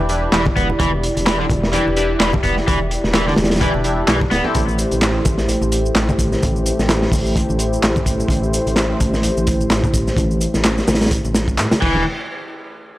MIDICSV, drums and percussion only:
0, 0, Header, 1, 2, 480
1, 0, Start_track
1, 0, Tempo, 468750
1, 819, Time_signature, 4, 2, 24, 8
1, 13294, End_track
2, 0, Start_track
2, 0, Title_t, "Drums"
2, 92, Note_on_c, 9, 42, 70
2, 194, Note_off_c, 9, 42, 0
2, 329, Note_on_c, 9, 38, 107
2, 330, Note_on_c, 9, 42, 82
2, 338, Note_on_c, 9, 39, 112
2, 431, Note_off_c, 9, 38, 0
2, 432, Note_off_c, 9, 42, 0
2, 441, Note_off_c, 9, 39, 0
2, 467, Note_on_c, 9, 63, 101
2, 477, Note_on_c, 9, 36, 97
2, 569, Note_off_c, 9, 63, 0
2, 578, Note_off_c, 9, 36, 0
2, 578, Note_on_c, 9, 36, 98
2, 579, Note_on_c, 9, 42, 79
2, 681, Note_off_c, 9, 36, 0
2, 681, Note_off_c, 9, 42, 0
2, 713, Note_on_c, 9, 64, 95
2, 815, Note_off_c, 9, 64, 0
2, 815, Note_on_c, 9, 42, 88
2, 817, Note_on_c, 9, 36, 114
2, 822, Note_on_c, 9, 63, 83
2, 918, Note_off_c, 9, 42, 0
2, 919, Note_off_c, 9, 36, 0
2, 925, Note_off_c, 9, 63, 0
2, 1060, Note_on_c, 9, 42, 69
2, 1162, Note_off_c, 9, 42, 0
2, 1195, Note_on_c, 9, 63, 64
2, 1196, Note_on_c, 9, 42, 47
2, 1298, Note_off_c, 9, 63, 0
2, 1299, Note_off_c, 9, 42, 0
2, 1299, Note_on_c, 9, 38, 123
2, 1299, Note_on_c, 9, 42, 87
2, 1300, Note_on_c, 9, 39, 114
2, 1401, Note_off_c, 9, 38, 0
2, 1401, Note_off_c, 9, 42, 0
2, 1402, Note_off_c, 9, 39, 0
2, 1531, Note_on_c, 9, 36, 89
2, 1534, Note_on_c, 9, 42, 67
2, 1541, Note_on_c, 9, 63, 100
2, 1634, Note_off_c, 9, 36, 0
2, 1637, Note_off_c, 9, 42, 0
2, 1644, Note_off_c, 9, 63, 0
2, 1674, Note_on_c, 9, 38, 54
2, 1770, Note_on_c, 9, 42, 92
2, 1776, Note_off_c, 9, 38, 0
2, 1778, Note_on_c, 9, 64, 86
2, 1873, Note_off_c, 9, 42, 0
2, 1881, Note_off_c, 9, 64, 0
2, 1921, Note_on_c, 9, 63, 69
2, 2012, Note_on_c, 9, 42, 72
2, 2024, Note_off_c, 9, 63, 0
2, 2114, Note_off_c, 9, 42, 0
2, 2254, Note_on_c, 9, 38, 106
2, 2259, Note_on_c, 9, 39, 115
2, 2259, Note_on_c, 9, 42, 85
2, 2356, Note_off_c, 9, 38, 0
2, 2362, Note_off_c, 9, 39, 0
2, 2362, Note_off_c, 9, 42, 0
2, 2388, Note_on_c, 9, 63, 101
2, 2398, Note_on_c, 9, 36, 100
2, 2491, Note_off_c, 9, 63, 0
2, 2493, Note_on_c, 9, 42, 78
2, 2494, Note_off_c, 9, 36, 0
2, 2494, Note_on_c, 9, 36, 86
2, 2595, Note_off_c, 9, 42, 0
2, 2597, Note_off_c, 9, 36, 0
2, 2633, Note_on_c, 9, 38, 34
2, 2735, Note_off_c, 9, 38, 0
2, 2741, Note_on_c, 9, 42, 95
2, 2743, Note_on_c, 9, 63, 90
2, 2744, Note_on_c, 9, 36, 112
2, 2844, Note_off_c, 9, 42, 0
2, 2845, Note_off_c, 9, 63, 0
2, 2846, Note_off_c, 9, 36, 0
2, 2981, Note_on_c, 9, 42, 70
2, 3083, Note_off_c, 9, 42, 0
2, 3114, Note_on_c, 9, 38, 45
2, 3121, Note_on_c, 9, 63, 61
2, 3213, Note_off_c, 9, 38, 0
2, 3213, Note_on_c, 9, 38, 127
2, 3216, Note_on_c, 9, 42, 84
2, 3219, Note_on_c, 9, 39, 112
2, 3224, Note_off_c, 9, 63, 0
2, 3315, Note_off_c, 9, 38, 0
2, 3319, Note_off_c, 9, 42, 0
2, 3321, Note_off_c, 9, 39, 0
2, 3353, Note_on_c, 9, 38, 47
2, 3445, Note_off_c, 9, 38, 0
2, 3445, Note_on_c, 9, 38, 100
2, 3454, Note_on_c, 9, 42, 67
2, 3458, Note_on_c, 9, 63, 86
2, 3521, Note_off_c, 9, 38, 0
2, 3521, Note_on_c, 9, 38, 82
2, 3524, Note_off_c, 9, 42, 0
2, 3524, Note_on_c, 9, 42, 61
2, 3560, Note_off_c, 9, 63, 0
2, 3587, Note_off_c, 9, 38, 0
2, 3587, Note_on_c, 9, 38, 80
2, 3596, Note_off_c, 9, 42, 0
2, 3596, Note_on_c, 9, 42, 70
2, 3645, Note_off_c, 9, 42, 0
2, 3645, Note_on_c, 9, 42, 63
2, 3646, Note_off_c, 9, 38, 0
2, 3646, Note_on_c, 9, 38, 78
2, 3699, Note_off_c, 9, 42, 0
2, 3699, Note_on_c, 9, 36, 106
2, 3699, Note_on_c, 9, 42, 84
2, 3748, Note_off_c, 9, 38, 0
2, 3801, Note_off_c, 9, 36, 0
2, 3801, Note_off_c, 9, 42, 0
2, 3829, Note_on_c, 9, 63, 64
2, 3931, Note_off_c, 9, 63, 0
2, 3934, Note_on_c, 9, 42, 75
2, 4036, Note_off_c, 9, 42, 0
2, 4172, Note_on_c, 9, 42, 94
2, 4178, Note_on_c, 9, 39, 111
2, 4180, Note_on_c, 9, 38, 119
2, 4275, Note_off_c, 9, 42, 0
2, 4281, Note_off_c, 9, 39, 0
2, 4282, Note_off_c, 9, 38, 0
2, 4314, Note_on_c, 9, 63, 97
2, 4315, Note_on_c, 9, 36, 85
2, 4416, Note_on_c, 9, 42, 72
2, 4417, Note_off_c, 9, 63, 0
2, 4418, Note_off_c, 9, 36, 0
2, 4420, Note_on_c, 9, 38, 53
2, 4519, Note_off_c, 9, 42, 0
2, 4522, Note_off_c, 9, 38, 0
2, 4550, Note_on_c, 9, 64, 92
2, 4652, Note_off_c, 9, 64, 0
2, 4655, Note_on_c, 9, 42, 88
2, 4659, Note_on_c, 9, 82, 41
2, 4661, Note_on_c, 9, 36, 97
2, 4663, Note_on_c, 9, 63, 86
2, 4757, Note_off_c, 9, 42, 0
2, 4762, Note_off_c, 9, 82, 0
2, 4763, Note_off_c, 9, 36, 0
2, 4765, Note_off_c, 9, 63, 0
2, 4797, Note_on_c, 9, 82, 27
2, 4900, Note_off_c, 9, 82, 0
2, 4901, Note_on_c, 9, 42, 70
2, 4901, Note_on_c, 9, 82, 73
2, 5004, Note_off_c, 9, 42, 0
2, 5004, Note_off_c, 9, 82, 0
2, 5031, Note_on_c, 9, 42, 36
2, 5034, Note_on_c, 9, 63, 65
2, 5038, Note_on_c, 9, 82, 29
2, 5133, Note_off_c, 9, 42, 0
2, 5137, Note_off_c, 9, 63, 0
2, 5137, Note_on_c, 9, 38, 107
2, 5140, Note_off_c, 9, 82, 0
2, 5140, Note_on_c, 9, 42, 78
2, 5141, Note_on_c, 9, 39, 108
2, 5141, Note_on_c, 9, 82, 43
2, 5239, Note_off_c, 9, 38, 0
2, 5242, Note_off_c, 9, 42, 0
2, 5243, Note_off_c, 9, 39, 0
2, 5243, Note_off_c, 9, 82, 0
2, 5376, Note_on_c, 9, 42, 66
2, 5376, Note_on_c, 9, 63, 95
2, 5380, Note_on_c, 9, 82, 72
2, 5384, Note_on_c, 9, 36, 93
2, 5478, Note_off_c, 9, 42, 0
2, 5478, Note_off_c, 9, 63, 0
2, 5482, Note_off_c, 9, 82, 0
2, 5487, Note_off_c, 9, 36, 0
2, 5507, Note_on_c, 9, 38, 47
2, 5516, Note_on_c, 9, 82, 30
2, 5609, Note_off_c, 9, 38, 0
2, 5611, Note_on_c, 9, 64, 75
2, 5618, Note_off_c, 9, 82, 0
2, 5619, Note_on_c, 9, 42, 80
2, 5619, Note_on_c, 9, 82, 41
2, 5714, Note_off_c, 9, 64, 0
2, 5721, Note_off_c, 9, 42, 0
2, 5721, Note_off_c, 9, 82, 0
2, 5750, Note_on_c, 9, 63, 73
2, 5755, Note_on_c, 9, 82, 29
2, 5852, Note_off_c, 9, 63, 0
2, 5857, Note_on_c, 9, 42, 70
2, 5858, Note_off_c, 9, 82, 0
2, 5859, Note_on_c, 9, 82, 69
2, 5960, Note_off_c, 9, 42, 0
2, 5962, Note_off_c, 9, 82, 0
2, 5996, Note_on_c, 9, 82, 31
2, 6095, Note_on_c, 9, 42, 88
2, 6097, Note_on_c, 9, 38, 114
2, 6099, Note_off_c, 9, 82, 0
2, 6099, Note_on_c, 9, 39, 110
2, 6099, Note_on_c, 9, 82, 42
2, 6197, Note_off_c, 9, 42, 0
2, 6200, Note_off_c, 9, 38, 0
2, 6202, Note_off_c, 9, 39, 0
2, 6202, Note_off_c, 9, 82, 0
2, 6235, Note_on_c, 9, 36, 85
2, 6236, Note_on_c, 9, 82, 28
2, 6241, Note_on_c, 9, 63, 93
2, 6337, Note_off_c, 9, 36, 0
2, 6337, Note_on_c, 9, 36, 101
2, 6337, Note_on_c, 9, 42, 67
2, 6338, Note_off_c, 9, 82, 0
2, 6338, Note_on_c, 9, 82, 72
2, 6343, Note_off_c, 9, 63, 0
2, 6439, Note_off_c, 9, 36, 0
2, 6440, Note_off_c, 9, 42, 0
2, 6441, Note_off_c, 9, 82, 0
2, 6475, Note_on_c, 9, 38, 39
2, 6476, Note_on_c, 9, 82, 29
2, 6578, Note_off_c, 9, 38, 0
2, 6578, Note_off_c, 9, 82, 0
2, 6580, Note_on_c, 9, 63, 86
2, 6581, Note_on_c, 9, 82, 39
2, 6585, Note_on_c, 9, 42, 80
2, 6587, Note_on_c, 9, 36, 103
2, 6683, Note_off_c, 9, 63, 0
2, 6683, Note_off_c, 9, 82, 0
2, 6688, Note_off_c, 9, 42, 0
2, 6690, Note_off_c, 9, 36, 0
2, 6718, Note_on_c, 9, 82, 29
2, 6818, Note_on_c, 9, 42, 60
2, 6820, Note_off_c, 9, 82, 0
2, 6821, Note_on_c, 9, 82, 72
2, 6921, Note_off_c, 9, 42, 0
2, 6923, Note_off_c, 9, 82, 0
2, 6957, Note_on_c, 9, 38, 51
2, 6958, Note_on_c, 9, 82, 30
2, 6959, Note_on_c, 9, 63, 60
2, 7055, Note_off_c, 9, 38, 0
2, 7055, Note_on_c, 9, 38, 110
2, 7060, Note_on_c, 9, 42, 90
2, 7061, Note_off_c, 9, 82, 0
2, 7062, Note_off_c, 9, 63, 0
2, 7062, Note_on_c, 9, 39, 103
2, 7062, Note_on_c, 9, 82, 41
2, 7158, Note_off_c, 9, 38, 0
2, 7162, Note_off_c, 9, 42, 0
2, 7165, Note_off_c, 9, 39, 0
2, 7165, Note_off_c, 9, 82, 0
2, 7189, Note_on_c, 9, 38, 47
2, 7288, Note_on_c, 9, 36, 90
2, 7291, Note_off_c, 9, 38, 0
2, 7292, Note_on_c, 9, 46, 86
2, 7301, Note_on_c, 9, 82, 73
2, 7304, Note_on_c, 9, 63, 86
2, 7390, Note_off_c, 9, 36, 0
2, 7394, Note_off_c, 9, 46, 0
2, 7403, Note_off_c, 9, 82, 0
2, 7406, Note_off_c, 9, 63, 0
2, 7438, Note_on_c, 9, 82, 30
2, 7534, Note_on_c, 9, 36, 96
2, 7540, Note_off_c, 9, 82, 0
2, 7540, Note_on_c, 9, 82, 39
2, 7541, Note_on_c, 9, 42, 90
2, 7637, Note_off_c, 9, 36, 0
2, 7642, Note_off_c, 9, 82, 0
2, 7643, Note_off_c, 9, 42, 0
2, 7666, Note_on_c, 9, 63, 59
2, 7677, Note_on_c, 9, 82, 27
2, 7769, Note_off_c, 9, 63, 0
2, 7771, Note_on_c, 9, 42, 73
2, 7779, Note_off_c, 9, 82, 0
2, 7781, Note_on_c, 9, 82, 69
2, 7873, Note_off_c, 9, 42, 0
2, 7883, Note_off_c, 9, 82, 0
2, 7917, Note_on_c, 9, 82, 33
2, 8019, Note_off_c, 9, 82, 0
2, 8019, Note_on_c, 9, 42, 83
2, 8021, Note_on_c, 9, 39, 101
2, 8021, Note_on_c, 9, 82, 39
2, 8024, Note_on_c, 9, 38, 104
2, 8121, Note_off_c, 9, 42, 0
2, 8123, Note_off_c, 9, 39, 0
2, 8123, Note_off_c, 9, 82, 0
2, 8127, Note_off_c, 9, 38, 0
2, 8152, Note_on_c, 9, 36, 89
2, 8156, Note_on_c, 9, 63, 87
2, 8157, Note_on_c, 9, 82, 27
2, 8254, Note_off_c, 9, 36, 0
2, 8255, Note_on_c, 9, 36, 93
2, 8257, Note_on_c, 9, 42, 79
2, 8258, Note_off_c, 9, 63, 0
2, 8259, Note_off_c, 9, 82, 0
2, 8260, Note_on_c, 9, 82, 74
2, 8357, Note_off_c, 9, 36, 0
2, 8359, Note_off_c, 9, 42, 0
2, 8362, Note_off_c, 9, 82, 0
2, 8395, Note_on_c, 9, 64, 74
2, 8397, Note_on_c, 9, 82, 30
2, 8484, Note_on_c, 9, 36, 104
2, 8498, Note_off_c, 9, 64, 0
2, 8499, Note_off_c, 9, 82, 0
2, 8499, Note_on_c, 9, 63, 78
2, 8499, Note_on_c, 9, 82, 40
2, 8502, Note_on_c, 9, 42, 93
2, 8586, Note_off_c, 9, 36, 0
2, 8601, Note_off_c, 9, 82, 0
2, 8602, Note_off_c, 9, 63, 0
2, 8604, Note_off_c, 9, 42, 0
2, 8637, Note_on_c, 9, 82, 29
2, 8739, Note_off_c, 9, 82, 0
2, 8741, Note_on_c, 9, 82, 74
2, 8743, Note_on_c, 9, 42, 66
2, 8843, Note_off_c, 9, 82, 0
2, 8845, Note_off_c, 9, 42, 0
2, 8872, Note_on_c, 9, 63, 62
2, 8877, Note_on_c, 9, 42, 38
2, 8879, Note_on_c, 9, 82, 30
2, 8970, Note_on_c, 9, 38, 109
2, 8975, Note_off_c, 9, 63, 0
2, 8978, Note_off_c, 9, 42, 0
2, 8978, Note_on_c, 9, 42, 93
2, 8981, Note_off_c, 9, 82, 0
2, 8982, Note_on_c, 9, 39, 100
2, 8982, Note_on_c, 9, 82, 42
2, 9072, Note_off_c, 9, 38, 0
2, 9081, Note_off_c, 9, 42, 0
2, 9085, Note_off_c, 9, 39, 0
2, 9085, Note_off_c, 9, 82, 0
2, 9218, Note_on_c, 9, 63, 78
2, 9219, Note_on_c, 9, 42, 72
2, 9222, Note_on_c, 9, 82, 73
2, 9224, Note_on_c, 9, 36, 98
2, 9320, Note_off_c, 9, 63, 0
2, 9322, Note_off_c, 9, 42, 0
2, 9325, Note_off_c, 9, 82, 0
2, 9326, Note_off_c, 9, 36, 0
2, 9357, Note_on_c, 9, 82, 30
2, 9358, Note_on_c, 9, 38, 52
2, 9452, Note_on_c, 9, 42, 90
2, 9460, Note_off_c, 9, 38, 0
2, 9460, Note_off_c, 9, 82, 0
2, 9461, Note_on_c, 9, 82, 43
2, 9468, Note_on_c, 9, 64, 74
2, 9555, Note_off_c, 9, 42, 0
2, 9564, Note_off_c, 9, 82, 0
2, 9570, Note_off_c, 9, 64, 0
2, 9598, Note_on_c, 9, 82, 31
2, 9600, Note_on_c, 9, 63, 58
2, 9695, Note_on_c, 9, 42, 82
2, 9700, Note_off_c, 9, 82, 0
2, 9701, Note_on_c, 9, 82, 68
2, 9702, Note_off_c, 9, 63, 0
2, 9704, Note_on_c, 9, 36, 107
2, 9797, Note_off_c, 9, 42, 0
2, 9803, Note_off_c, 9, 82, 0
2, 9807, Note_off_c, 9, 36, 0
2, 9838, Note_on_c, 9, 82, 31
2, 9934, Note_on_c, 9, 38, 112
2, 9937, Note_on_c, 9, 42, 86
2, 9940, Note_off_c, 9, 82, 0
2, 9941, Note_on_c, 9, 39, 102
2, 9941, Note_on_c, 9, 82, 40
2, 10037, Note_off_c, 9, 38, 0
2, 10039, Note_off_c, 9, 42, 0
2, 10043, Note_off_c, 9, 39, 0
2, 10043, Note_off_c, 9, 82, 0
2, 10073, Note_on_c, 9, 36, 100
2, 10077, Note_on_c, 9, 82, 30
2, 10081, Note_on_c, 9, 63, 92
2, 10175, Note_off_c, 9, 36, 0
2, 10176, Note_on_c, 9, 36, 100
2, 10178, Note_off_c, 9, 82, 0
2, 10178, Note_on_c, 9, 82, 74
2, 10181, Note_on_c, 9, 42, 66
2, 10183, Note_off_c, 9, 63, 0
2, 10278, Note_off_c, 9, 36, 0
2, 10281, Note_off_c, 9, 82, 0
2, 10283, Note_off_c, 9, 42, 0
2, 10316, Note_on_c, 9, 82, 31
2, 10317, Note_on_c, 9, 38, 36
2, 10409, Note_on_c, 9, 36, 106
2, 10419, Note_off_c, 9, 82, 0
2, 10419, Note_on_c, 9, 42, 83
2, 10419, Note_on_c, 9, 63, 76
2, 10420, Note_off_c, 9, 38, 0
2, 10421, Note_on_c, 9, 82, 41
2, 10512, Note_off_c, 9, 36, 0
2, 10522, Note_off_c, 9, 42, 0
2, 10522, Note_off_c, 9, 63, 0
2, 10523, Note_off_c, 9, 82, 0
2, 10557, Note_on_c, 9, 82, 30
2, 10659, Note_off_c, 9, 82, 0
2, 10660, Note_on_c, 9, 82, 78
2, 10661, Note_on_c, 9, 42, 63
2, 10762, Note_off_c, 9, 82, 0
2, 10763, Note_off_c, 9, 42, 0
2, 10793, Note_on_c, 9, 38, 45
2, 10797, Note_on_c, 9, 63, 61
2, 10797, Note_on_c, 9, 82, 31
2, 10895, Note_off_c, 9, 38, 0
2, 10897, Note_on_c, 9, 42, 90
2, 10899, Note_off_c, 9, 63, 0
2, 10899, Note_off_c, 9, 82, 0
2, 10901, Note_on_c, 9, 39, 109
2, 10901, Note_on_c, 9, 82, 45
2, 10903, Note_on_c, 9, 38, 120
2, 11000, Note_off_c, 9, 42, 0
2, 11003, Note_off_c, 9, 39, 0
2, 11003, Note_off_c, 9, 82, 0
2, 11005, Note_off_c, 9, 38, 0
2, 11036, Note_on_c, 9, 82, 29
2, 11043, Note_on_c, 9, 38, 53
2, 11138, Note_off_c, 9, 82, 0
2, 11139, Note_off_c, 9, 38, 0
2, 11139, Note_on_c, 9, 38, 97
2, 11139, Note_on_c, 9, 82, 76
2, 11141, Note_on_c, 9, 42, 65
2, 11144, Note_on_c, 9, 63, 96
2, 11208, Note_off_c, 9, 38, 0
2, 11208, Note_on_c, 9, 38, 86
2, 11212, Note_off_c, 9, 42, 0
2, 11212, Note_on_c, 9, 42, 65
2, 11241, Note_off_c, 9, 82, 0
2, 11246, Note_off_c, 9, 63, 0
2, 11276, Note_off_c, 9, 38, 0
2, 11276, Note_on_c, 9, 38, 85
2, 11276, Note_on_c, 9, 82, 32
2, 11277, Note_off_c, 9, 42, 0
2, 11277, Note_on_c, 9, 42, 70
2, 11328, Note_off_c, 9, 38, 0
2, 11328, Note_off_c, 9, 42, 0
2, 11328, Note_on_c, 9, 38, 88
2, 11328, Note_on_c, 9, 42, 61
2, 11376, Note_off_c, 9, 42, 0
2, 11376, Note_on_c, 9, 42, 97
2, 11378, Note_off_c, 9, 82, 0
2, 11381, Note_on_c, 9, 36, 108
2, 11381, Note_on_c, 9, 82, 44
2, 11431, Note_off_c, 9, 38, 0
2, 11478, Note_off_c, 9, 42, 0
2, 11483, Note_off_c, 9, 36, 0
2, 11483, Note_off_c, 9, 82, 0
2, 11517, Note_on_c, 9, 82, 30
2, 11518, Note_on_c, 9, 63, 62
2, 11617, Note_on_c, 9, 38, 103
2, 11620, Note_off_c, 9, 63, 0
2, 11620, Note_off_c, 9, 82, 0
2, 11621, Note_on_c, 9, 82, 75
2, 11623, Note_on_c, 9, 42, 76
2, 11720, Note_off_c, 9, 38, 0
2, 11724, Note_off_c, 9, 82, 0
2, 11725, Note_off_c, 9, 42, 0
2, 11753, Note_on_c, 9, 36, 88
2, 11758, Note_on_c, 9, 82, 32
2, 11856, Note_off_c, 9, 36, 0
2, 11858, Note_on_c, 9, 42, 60
2, 11861, Note_off_c, 9, 82, 0
2, 11861, Note_on_c, 9, 39, 103
2, 11861, Note_on_c, 9, 82, 42
2, 11863, Note_on_c, 9, 38, 44
2, 11960, Note_off_c, 9, 42, 0
2, 11963, Note_off_c, 9, 39, 0
2, 11963, Note_off_c, 9, 82, 0
2, 11966, Note_off_c, 9, 38, 0
2, 11996, Note_on_c, 9, 38, 90
2, 11998, Note_on_c, 9, 82, 31
2, 11999, Note_on_c, 9, 42, 80
2, 12006, Note_on_c, 9, 63, 87
2, 12098, Note_off_c, 9, 38, 0
2, 12101, Note_off_c, 9, 82, 0
2, 12102, Note_off_c, 9, 42, 0
2, 12104, Note_on_c, 9, 49, 81
2, 12105, Note_on_c, 9, 36, 115
2, 12108, Note_off_c, 9, 63, 0
2, 12207, Note_off_c, 9, 49, 0
2, 12208, Note_off_c, 9, 36, 0
2, 12235, Note_on_c, 9, 64, 91
2, 12337, Note_off_c, 9, 64, 0
2, 13294, End_track
0, 0, End_of_file